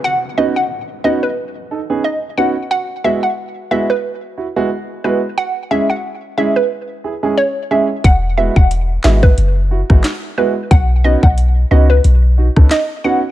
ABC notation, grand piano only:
X:1
M:4/4
L:1/16
Q:"Swing 16ths" 1/4=90
K:E
V:1 name="Grand piano"
z2 [B,CDF] z3 [B,CDF] z3 [DA] [B,CDG] z2 [B,CDF] z | z2 [G,B,EF] z3 [G,B,EF] z3 [EF] [G,B,EF] z2 [G,B,EF] z | z2 [G,CEG] z3 [G,CEG] z3 [EG] [G,CEG] z2 [G,CEG] z | z2 [G,B,EF] z3 [G,B,EF] z3 [EF] [G,B,EF] z2 [G,B,EF] z |
z2 [B,CDF] z3 [B,CDF] z3 [DF] [B,CDA] z2 [B,CDF] z |]